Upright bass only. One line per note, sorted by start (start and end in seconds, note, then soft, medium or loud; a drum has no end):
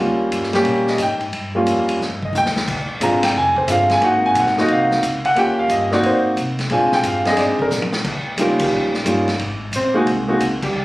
0.00 0.31 D#2 medium
0.32 0.64 G2 medium
0.65 0.98 A#2 medium
0.99 1.32 G#2 loud
1.32 1.65 G2 medium
1.66 1.99 F2 medium
1.99 2.32 G2 medium
2.33 2.66 D#2 loud
2.67 3.00 A#1 medium
3.00 3.33 G#1 medium
3.34 3.67 F1 medium
3.67 4.00 G1 loud
4.01 4.34 G#1 medium
4.34 4.46 A#1 loud
4.46 4.56 G#1 medium
4.57 4.67 F#1 medium
4.68 5.01 C2 medium
5.01 5.22 C#2 loud
5.24 muted upright bass stroke soft
5.35 5.67 D#2 medium
5.68 6.01 G2 loud
6.02 6.35 G#2 medium
6.37 6.69 C3 loud
6.70 7.03 A#2 medium
7.03 7.36 G2 loud
7.37 7.70 G#2 medium
7.70 8.03 A#2 loud
8.04 8.36 D#2 medium
8.37 8.70 C#2 medium
8.71 9.04 A#1 medium
9.04 9.38 G1 medium
9.39 9.71 G#1 medium
9.72 10.05 A#1 medium
10.06 10.38 C2 medium
10.39 10.72 C#2 loud
10.73 10.85 D#2 medium